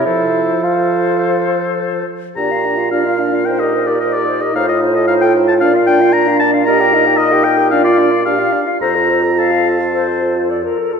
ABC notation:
X:1
M:4/4
L:1/16
Q:1/4=109
K:F
V:1 name="Oboe"
A4 A8- A2 z2 | [K:Bb] b4 f4 g e2 d e d2 e | f e2 e f g2 a f2 g2 b2 a2 | b4 e2 g2 f d3 f3 z |
b4 a8 z4 |]
V:2 name="Flute"
c4 c8- c2 z2 | [K:Bb] d f d f d f d f c B c B c B c B | c A c A c A c A d f d f d f d f | e g e g e g e g d f d f d f d f |
c A c A f4 c4 d B2 A |]
V:3 name="Clarinet"
A4 A8- A2 z2 | [K:Bb] D F D F D F D F B G B G B G B G | E F E F E F E F D F D F D F D F | B G B G B G B G D F D F D F D F |
A F A F A F A F A F A F A F A F |]
V:4 name="French horn"
F,12- F,2 z2 | [K:Bb] G4 F2 D2 E8 | F12 D4 | G2 E6 F4 G2 z2 |
F12- F2 z2 |]
V:5 name="Bassoon" clef=bass
E4 F8 z4 | [K:Bb] B,,16 | A,,8 B,,8- | B,,12- B,,2 z2 |
F,,12- F,,2 z2 |]